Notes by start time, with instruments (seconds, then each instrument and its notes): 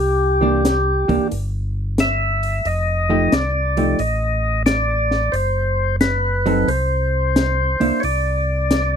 Already playing: tonewheel organ C2 G4
0.41 hollow-body jazz guitar E3 A#3 D4
0.65 snare, closed hi-hat
1.08 tonewheel organ C2, hollow-body jazz guitar E3 A#3 D4, kick, open hi-hat
1.32 tonewheel organ G1, open hi-hat
1.98 tonewheel organ E5, snare, closed hi-hat
2.43 open hi-hat
2.65 tonewheel organ F1 D#5, open hi-hat
3.09 hollow-body jazz guitar F3 A3 D#4 G4
3.32 tonewheel organ C2 D5, snare, closed hi-hat
3.77 hollow-body jazz guitar F3 A3 D#4 G4, open hi-hat
3.99 tonewheel organ A1 D#5, open hi-hat
4.66 tonewheel organ D5, snare, closed hi-hat
5.11 snare
5.32 tonewheel organ F#1 C5, open hi-hat
6.01 tonewheel organ B4, snare, closed hi-hat
6.46 hollow-body jazz guitar F#3 C4 D#4 A4, open hi-hat
6.68 tonewheel organ C2 C5, open hi-hat
7.36 snare, closed hi-hat
7.80 tonewheel organ C2, hollow-body jazz guitar A#3 D4 E4, open hi-hat
8.00 tonewheel organ C2 C#5, open hi-hat
8.05 tonewheel organ D5
8.71 snare, closed hi-hat